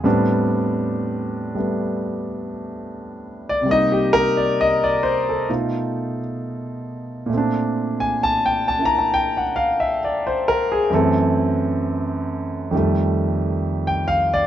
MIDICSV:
0, 0, Header, 1, 2, 480
1, 0, Start_track
1, 0, Tempo, 904977
1, 27, Time_signature, 4, 2, 24, 8
1, 7674, End_track
2, 0, Start_track
2, 0, Title_t, "Grand piano"
2, 0, Program_c, 0, 0
2, 0, Control_c, 0, 64, 127
2, 20, Note_on_c, 0, 45, 63
2, 21, Note_on_c, 0, 55, 64
2, 25, Note_on_c, 0, 59, 64
2, 25, Note_on_c, 0, 60, 59
2, 29, Note_on_c, 0, 62, 72
2, 34, Control_c, 0, 64, 0
2, 121, Control_c, 0, 64, 127
2, 814, Note_off_c, 0, 55, 0
2, 822, Note_on_c, 0, 55, 45
2, 830, Note_on_c, 0, 57, 43
2, 831, Note_off_c, 0, 59, 0
2, 839, Note_on_c, 0, 59, 51
2, 1853, Note_on_c, 0, 74, 81
2, 1919, Note_on_c, 0, 48, 55
2, 1930, Note_off_c, 0, 55, 0
2, 1936, Note_off_c, 0, 74, 0
2, 1938, Note_on_c, 0, 55, 51
2, 1945, Note_off_c, 0, 45, 0
2, 1947, Note_off_c, 0, 60, 0
2, 1949, Note_off_c, 0, 57, 0
2, 1950, Note_off_c, 0, 62, 0
2, 1954, Note_off_c, 0, 59, 0
2, 1954, Control_c, 0, 64, 0
2, 1956, Note_on_c, 0, 58, 54
2, 1969, Note_on_c, 0, 75, 104
2, 1976, Note_on_c, 0, 63, 64
2, 2037, Control_c, 0, 64, 127
2, 2079, Note_on_c, 0, 67, 65
2, 2119, Note_off_c, 0, 75, 0
2, 2191, Note_on_c, 0, 70, 115
2, 2256, Note_off_c, 0, 67, 0
2, 2306, Note_off_c, 0, 70, 0
2, 2318, Note_on_c, 0, 74, 73
2, 2408, Note_off_c, 0, 74, 0
2, 2444, Note_on_c, 0, 75, 100
2, 2565, Note_on_c, 0, 74, 86
2, 2596, Note_off_c, 0, 75, 0
2, 2668, Note_on_c, 0, 72, 88
2, 2739, Note_off_c, 0, 74, 0
2, 2785, Note_off_c, 0, 72, 0
2, 2806, Note_on_c, 0, 69, 61
2, 2894, Note_off_c, 0, 48, 0
2, 2904, Note_off_c, 0, 55, 0
2, 2909, Note_off_c, 0, 63, 0
2, 2913, Note_off_c, 0, 58, 0
2, 2914, Note_on_c, 0, 47, 50
2, 2914, Note_on_c, 0, 57, 43
2, 2917, Control_c, 0, 64, 0
2, 2917, Note_on_c, 0, 63, 48
2, 2920, Note_on_c, 0, 65, 52
2, 3007, Control_c, 0, 64, 127
2, 3279, Note_off_c, 0, 69, 0
2, 3851, Note_on_c, 0, 46, 64
2, 3862, Note_off_c, 0, 57, 0
2, 3870, Note_on_c, 0, 57, 49
2, 3871, Note_off_c, 0, 47, 0
2, 3873, Note_off_c, 0, 63, 0
2, 3875, Note_off_c, 0, 65, 0
2, 3875, Control_c, 0, 64, 0
2, 3890, Note_on_c, 0, 60, 49
2, 3912, Note_on_c, 0, 62, 66
2, 3970, Control_c, 0, 64, 127
2, 4245, Note_on_c, 0, 80, 85
2, 4332, Note_off_c, 0, 80, 0
2, 4367, Note_on_c, 0, 81, 95
2, 4485, Note_on_c, 0, 79, 87
2, 4518, Note_off_c, 0, 81, 0
2, 4604, Note_on_c, 0, 81, 91
2, 4631, Note_off_c, 0, 81, 0
2, 4659, Note_off_c, 0, 79, 0
2, 4660, Note_off_c, 0, 62, 0
2, 4661, Note_on_c, 0, 58, 42
2, 4668, Note_on_c, 0, 62, 41
2, 4680, Note_on_c, 0, 64, 47
2, 4696, Note_on_c, 0, 82, 97
2, 4766, Note_on_c, 0, 81, 72
2, 4790, Note_off_c, 0, 82, 0
2, 4821, Note_off_c, 0, 81, 0
2, 4846, Note_on_c, 0, 79, 89
2, 4971, Note_on_c, 0, 78, 75
2, 4998, Note_off_c, 0, 79, 0
2, 5070, Note_on_c, 0, 77, 87
2, 5142, Note_off_c, 0, 78, 0
2, 5186, Note_off_c, 0, 77, 0
2, 5198, Note_on_c, 0, 76, 78
2, 5288, Note_off_c, 0, 76, 0
2, 5328, Note_on_c, 0, 74, 66
2, 5446, Note_on_c, 0, 72, 82
2, 5478, Note_off_c, 0, 74, 0
2, 5559, Note_on_c, 0, 70, 96
2, 5619, Note_off_c, 0, 72, 0
2, 5670, Note_off_c, 0, 70, 0
2, 5685, Note_on_c, 0, 68, 77
2, 5771, Note_off_c, 0, 68, 0
2, 5779, Note_off_c, 0, 46, 0
2, 5783, Note_on_c, 0, 42, 66
2, 5785, Note_off_c, 0, 58, 0
2, 5788, Note_off_c, 0, 62, 0
2, 5789, Note_off_c, 0, 57, 0
2, 5792, Note_on_c, 0, 52, 65
2, 5794, Note_off_c, 0, 64, 0
2, 5795, Control_c, 0, 64, 0
2, 5799, Note_off_c, 0, 60, 0
2, 5802, Note_on_c, 0, 57, 58
2, 5802, Note_on_c, 0, 69, 73
2, 5808, Note_on_c, 0, 60, 73
2, 5888, Control_c, 0, 64, 127
2, 6733, Note_off_c, 0, 69, 0
2, 6741, Note_on_c, 0, 41, 60
2, 6745, Note_off_c, 0, 42, 0
2, 6748, Note_on_c, 0, 51, 50
2, 6749, Note_off_c, 0, 52, 0
2, 6754, Note_off_c, 0, 57, 0
2, 6755, Control_c, 0, 64, 0
2, 6758, Note_off_c, 0, 60, 0
2, 6758, Note_on_c, 0, 55, 59
2, 6766, Note_on_c, 0, 57, 64
2, 6857, Control_c, 0, 64, 127
2, 7358, Note_on_c, 0, 79, 75
2, 7466, Note_on_c, 0, 77, 97
2, 7534, Note_off_c, 0, 79, 0
2, 7583, Note_off_c, 0, 77, 0
2, 7604, Note_on_c, 0, 74, 88
2, 7674, Note_off_c, 0, 41, 0
2, 7674, Note_off_c, 0, 51, 0
2, 7674, Note_off_c, 0, 55, 0
2, 7674, Note_off_c, 0, 57, 0
2, 7674, Note_off_c, 0, 74, 0
2, 7674, End_track
0, 0, End_of_file